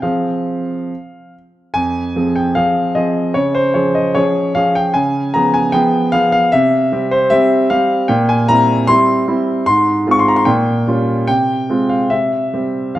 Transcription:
0.02 F3 C4 G#4 F5
1.74 F2 G#5
2.16 F3 C4 G#4
2.36 G5
2.55 F3 C4 G#4 F5
2.95 F3 C4 G#4 D#5
3.34 C#3 C#5
3.55 C5
3.74 F3 C#4 G#4 C#5
3.95 D#5
4.15 F3 C#4 G#4 C#5
4.55 F3 C#4 G#4 F5
4.75 G5
4.94 C#3 G#5
5.34 F3 B3 G#4 A#5
5.54 G#5
5.72 F3 B3 G#4 G5
6.12 F3 B3 G#4 F5
6.32 F5
6.52 C3 E5
6.92 G3 C4 G4
7.11 C5
7.30 G3 C4 G4 E5
7.70 G3 C4 G4 F5
8.08 A#2 G5
8.29 G#5
8.48 G3 C4 E4 A#5
8.87 G3 C4 E4 C6
9.28 G3 C4 E4
9.66 G#2 C6
10.07 G#3 C4 F4
10.11 C#6
10.19 C6
10.28 A#5
10.36 C6
10.45 A#2 G5
10.88 G3 C#4 F4
11.27 C3 G5
11.70 G#3 C4 F4
11.89 F5
12.10 C3 E5
12.53 G3 C4 G4
12.95 F3 C4 F5

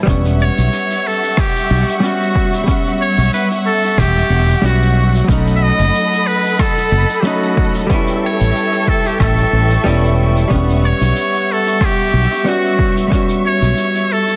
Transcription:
0.03 E1 G3 B3 E5 F#5
0.07 C#4 F#5 C#6, kick, closed hi-hat, shaker
0.25 closed hi-hat, shaker
0.42 C#5
0.58 B1, closed hi-hat, shaker
0.72 closed hi-hat, shaker
0.91 closed hi-hat, shaker
1.07 A4
1.23 closed hi-hat, shaker
1.37 G4, kick, cross-stick, closed hi-hat, shaker
1.55 closed hi-hat, shaker
1.70 B1
1.88 closed hi-hat, shaker
1.97 G3 G4
2.02 B3 C#4 F#4, closed hi-hat, shaker
2.21 shaker
2.35 kick
2.54 closed hi-hat, shaker
2.64 G3 B3
2.68 C#4 F#5, kick, closed hi-hat, shaker
2.86 closed hi-hat, shaker
3.01 C#5
3.18 B1, closed hi-hat, shaker
3.33 B4, closed hi-hat, shaker
3.51 closed hi-hat, shaker
3.66 A4
3.84 closed hi-hat, shaker
3.98 E1 G4, kick, cross-stick, closed hi-hat, shaker
4.17 closed hi-hat, shaker
4.30 E1
4.49 closed hi-hat, shaker
4.62 B1 G3 B3 C#4 F#4, closed hi-hat, shaker
4.66 F#4
4.83 shaker
5.15 closed hi-hat, shaker
5.24 F#3 A3
5.28 B1 C#4 D#4 A4 D#5 B5, kick, closed hi-hat, shaker
5.47 closed hi-hat, shaker
5.56 E5
5.63 D#5
5.79 F#1, closed hi-hat, shaker
5.94 closed hi-hat, shaker
6.13 closed hi-hat, shaker
6.27 B4
6.45 closed hi-hat, shaker
6.59 A4, kick, cross-stick, closed hi-hat, shaker
6.77 closed hi-hat, shaker
6.91 F#1
7.09 closed hi-hat, shaker
7.20 F#3 A3 G4, closed hi-hat, shaker
7.25 C#4 D#4 F#4
7.41 shaker
7.57 kick
7.74 closed hi-hat, shaker
7.87 G3 B3, kick, closed hi-hat, shaker
7.91 C#4 E4 E5 G5 C#6
8.07 closed hi-hat, shaker
8.26 C#5
8.40 A1, closed hi-hat, shaker
8.55 closed hi-hat, shaker
8.72 closed hi-hat, shaker
8.88 A4, kick
9.04 G4, closed hi-hat, shaker
9.20 A1 A4, kick, cross-stick, closed hi-hat, shaker
9.38 closed hi-hat, shaker
9.53 A1
9.71 closed hi-hat, shaker
9.84 E1 G3 B3 C#4 E4, closed hi-hat, shaker
10.04 shaker
10.36 closed hi-hat, shaker
10.48 E1 G3 B3 E5 F#5, kick, closed hi-hat, shaker
10.53 C#4 F#5
10.68 closed hi-hat, shaker
10.85 C#5
11.01 B1, closed hi-hat, shaker
11.16 closed hi-hat, shaker
11.34 closed hi-hat, shaker
11.52 A4
11.67 closed hi-hat, shaker
11.81 kick, cross-stick, closed hi-hat, shaker
11.85 G4
11.99 closed hi-hat, shaker
12.13 B1
12.32 closed hi-hat, shaker
12.44 G3 B3 C#4 F#4, closed hi-hat, shaker
12.49 F#4
12.65 shaker
12.79 kick
12.97 closed hi-hat, shaker
13.08 G3 B3, kick, closed hi-hat
13.13 C#4 F#4, shaker
13.29 closed hi-hat, shaker
13.46 C#5
13.62 B1, closed hi-hat, shaker
13.77 closed hi-hat, shaker
13.95 closed hi-hat, shaker
14.12 A4
14.28 closed hi-hat, shaker

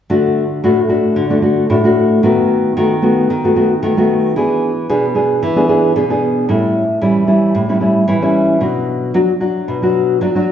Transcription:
0.10 D3 A3 D4 F#4
0.64 A2 A3 D4 F#4
0.89 A3 D4 F#4
1.16 D3
1.30 A3 D4 F#4
1.42 A3 D4 F#4
1.70 A2 A3 D4 F#4
1.84 A3 D4 F#4
2.23 D#3 A3 B3 F#4
2.77 D#3 A3 B3 F#4
3.02 A3 B3 F#4
3.30 D#3
3.44 A3 B3 F#4
3.55 A3 B3 F#4
3.83 D#3 A3 B3 F#4
3.97 A3 B3 F#4
4.36 E3 B3 D4 G#4
4.89 B2 B3 D4 G#4
5.15 B3 D4 G#4
5.43 E3
5.56 B3 D4 G#4
5.68 B3 D4 G#4
5.96 B2 B3 D4 G#4
6.10 B3 D4 G#4
6.49 A2 G3 C#4 E4
7.01 E3 G3 C#4 E4
7.27 G3 C#4 E4
7.55 A2
7.69 G3 C#4 E4
7.80 G3 C#4 E4
8.08 E3 G3 C#4 E4
8.22 G3 C#4 E4
8.61 B2 F#3 D4 F#4
9.14 F#3 D4 F#4
9.40 F#3 D4 F#4
9.68 B2
9.82 F#3 D4 F#4
10.21 F#3 D4 F#4
10.35 F#3 D4 F#4

